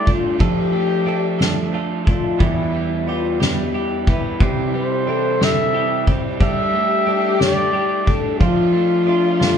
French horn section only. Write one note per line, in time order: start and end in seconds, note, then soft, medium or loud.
0.08 0.41 F4 medium
0.41 1.76 G4 loud
2.08 2.38 F4 medium
2.40 3.07 E4 medium
3.07 3.41 F4 medium
3.40 4.07 G4 loud
4.08 4.41 E4 medium
4.41 5.08 G4 loud
5.08 6.14 A4 medium
6.40 8.03 G4 loud
8.07 8.40 A4 loud
8.39 9.58 F4 loud